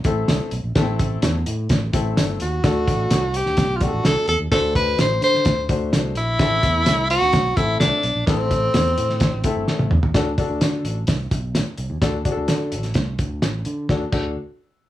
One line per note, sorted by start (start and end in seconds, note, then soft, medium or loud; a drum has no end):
0.04 0.25 A1 medium
0.04 0.49 A3 medium
0.04 0.49 C4 medium
0.04 0.49 E4 medium
0.04 0.49 A4 loud
0.04 kick loud
0.04 closed hi-hat medium
0.28 0.39 C2 loud
0.28 snare loud
0.28 closed hi-hat medium
0.51 0.62 B1 medium
0.51 closed hi-hat medium
0.64 0.74 A#1 medium
0.75 1.16 A1 loud
0.75 1.34 A3 medium
0.75 0.81 B3 medium
0.75 1.34 E4 medium
0.75 1.34 A4 loud
0.75 kick loud
0.75 snare loud
0.75 closed hi-hat medium
0.81 1.37 C4 medium
0.99 kick loud
0.99 closed hi-hat medium
1.22 1.43 E2 loud
1.22 snare loud
1.22 closed hi-hat loud
1.46 1.67 A2 loud
1.46 closed hi-hat medium
1.69 1.90 A1 loud
1.69 kick loud
1.69 snare loud
1.69 closed hi-hat medium
1.93 2.14 A1 medium
1.93 2.37 A3 medium
1.93 2.37 C4 medium
1.93 2.37 E4 medium
1.93 2.37 A4 loud
1.93 kick loud
1.93 closed hi-hat medium
2.16 2.37 G1 loud
2.16 snare loud
2.16 closed hi-hat medium
2.40 2.61 D#2 medium
2.40 3.38 F#4 medium
2.40 closed hi-hat medium
2.64 2.84 D2 medium
2.64 3.22 A3 medium
2.64 3.22 D4 medium
2.64 3.22 F#4 medium
2.64 3.23 A4 medium
2.64 kick loud
2.64 snare loud
2.64 closed hi-hat medium
2.88 3.08 A1 medium
2.88 kick loud
2.88 closed hi-hat medium
3.11 3.41 C2 medium
3.11 snare loud
3.11 closed hi-hat loud
3.34 3.78 G4 loud
3.34 closed hi-hat medium
3.46 3.56 D2 medium
3.46 snare soft
3.57 3.88 B1 loud
3.57 kick loud
3.57 snare loud
3.57 closed hi-hat medium
3.76 3.84 F4 medium
3.81 4.25 A3 medium
3.81 4.25 D4 medium
3.81 4.25 F#4 medium
3.81 4.05 F#4 medium
3.81 3.87 G4 medium
3.81 kick loud
3.81 closed hi-hat medium
3.88 4.28 A4 medium
3.93 4.03 A1 loud
4.04 4.15 C2 loud
4.04 4.27 A4 loud
4.04 snare loud
4.04 closed hi-hat loud
4.28 4.38 E2 medium
4.28 4.39 A4 medium
4.28 closed hi-hat medium
4.39 4.50 D#2 loud
4.51 4.92 D2 loud
4.51 5.10 A3 medium
4.51 5.10 D4 medium
4.51 5.10 F#4 medium
4.51 4.74 A4 loud
4.51 5.10 C5 loud
4.51 kick loud
4.51 snare loud
4.51 closed hi-hat medium
4.75 4.97 B4 loud
4.75 kick medium
4.75 closed hi-hat medium
4.98 5.19 A1 loud
4.98 5.22 C5 loud
4.98 snare loud
4.98 closed hi-hat loud
5.22 5.47 D3 loud
5.22 5.67 C5 loud
5.22 closed hi-hat medium
5.34 snare soft
5.45 5.66 D2 loud
5.45 kick loud
5.45 snare loud
5.45 closed hi-hat medium
5.69 5.90 D2 medium
5.69 6.13 A3 medium
5.69 6.13 D4 medium
5.69 6.13 F#4 medium
5.69 6.13 C5 medium
5.69 kick loud
5.69 closed hi-hat medium
5.92 6.13 C2 loud
5.92 snare loud
5.92 closed hi-hat loud
6.15 6.36 A#1 medium
6.15 7.06 E4 loud
6.15 closed hi-hat medium
6.39 6.60 A1 loud
6.39 6.97 A3 medium
6.39 6.98 C4 medium
6.39 6.98 E4 medium
6.39 6.98 A4 medium
6.39 kick loud
6.39 snare loud
6.39 closed hi-hat medium
6.63 6.84 E2 medium
6.63 kick loud
6.63 closed hi-hat medium
6.86 7.17 C2 loud
6.86 snare loud
6.86 closed hi-hat loud
7.10 7.58 F#4 loud
7.10 closed hi-hat medium
7.21 7.32 D2 medium
7.21 snare soft
7.33 7.54 B1 loud
7.33 kick loud
7.33 snare loud
7.33 closed hi-hat medium
7.56 7.77 A1 medium
7.56 8.00 A3 medium
7.56 8.00 C4 medium
7.56 7.79 E4 loud
7.56 8.01 E4 medium
7.56 8.01 A4 medium
7.56 kick loud
7.56 closed hi-hat medium
7.80 7.91 C2 loud
7.80 8.23 D4 medium
7.80 snare loud
7.80 closed hi-hat loud
8.03 8.14 B1 loud
8.03 closed hi-hat medium
8.15 8.25 A#1 medium
8.26 8.68 A1 loud
8.26 8.85 A3 medium
8.26 9.63 C4 loud
8.26 8.85 C4 medium
8.26 8.85 E4 medium
8.26 8.86 A4 medium
8.26 kick loud
8.26 snare loud
8.26 closed hi-hat medium
8.51 kick medium
8.51 closed hi-hat medium
8.74 8.94 E2 loud
8.74 snare loud
8.74 closed hi-hat loud
8.98 9.18 A2 loud
8.98 closed hi-hat medium
9.10 snare soft
9.20 9.31 A1 loud
9.20 kick loud
9.20 snare loud
9.20 closed hi-hat medium
9.33 9.43 A1 medium
9.44 9.88 A3 medium
9.44 9.88 C4 medium
9.44 9.88 E4 medium
9.44 9.88 A4 loud
9.44 kick loud
9.44 closed hi-hat medium
9.56 9.66 G1 medium
9.68 snare medium
9.79 9.90 A1 medium
9.79 high tom medium
9.91 10.01 E2 medium
9.91 mid tom loud
10.03 10.13 D#2 loud
10.03 floor tom loud
10.14 10.35 D2 medium
10.14 10.29 D4 medium
10.14 10.29 F#4 medium
10.14 10.29 A4 loud
10.14 kick loud
10.14 snare loud
10.14 closed hi-hat medium
10.38 10.96 D4 medium
10.38 10.96 F#4 medium
10.38 10.97 A4 medium
10.38 kick medium
10.38 closed hi-hat medium
10.50 10.60 D2 medium
10.61 10.81 D3 loud
10.61 snare loud
10.61 closed hi-hat loud
10.84 11.05 A1 medium
10.84 closed hi-hat medium
11.07 11.28 C2 loud
11.07 kick medium
11.07 snare loud
11.07 closed hi-hat medium
11.31 11.62 B1 medium
11.31 kick loud
11.31 closed hi-hat medium
11.55 snare loud
11.55 closed hi-hat loud
11.78 11.88 C2 medium
11.78 closed hi-hat medium
11.90 12.00 D#2 medium
12.01 12.22 D2 medium
12.01 12.16 D4 medium
12.01 12.16 F#4 medium
12.01 12.16 A4 loud
12.01 kick loud
12.01 snare loud
12.01 closed hi-hat medium
12.25 12.83 D4 medium
12.25 12.83 F#4 medium
12.25 12.31 G#4 medium
12.25 kick medium
12.25 closed hi-hat medium
12.32 12.87 A4 loud
12.37 12.47 D2 loud
12.48 12.73 D3 loud
12.48 snare loud
12.48 closed hi-hat loud
12.72 12.92 A1 medium
12.72 closed hi-hat medium
12.83 snare soft
12.83 closed hi-hat soft
12.94 13.16 C2 medium
12.94 kick loud
12.94 snare loud
12.94 closed hi-hat medium
13.19 13.39 D2 medium
13.19 kick loud
13.19 closed hi-hat medium
13.42 13.63 A1 medium
13.42 snare loud
13.42 closed hi-hat medium
13.65 13.86 D3 loud
13.65 closed hi-hat medium
13.89 14.02 D2 medium
13.89 14.03 D4 medium
13.89 14.03 F#4 medium
13.89 14.03 A4 medium
13.89 kick medium
13.89 snare medium
14.12 14.34 D2 medium
14.12 14.34 D4 medium
14.12 14.34 F#4 medium
14.12 14.34 A4 medium
14.12 kick loud
14.12 crash medium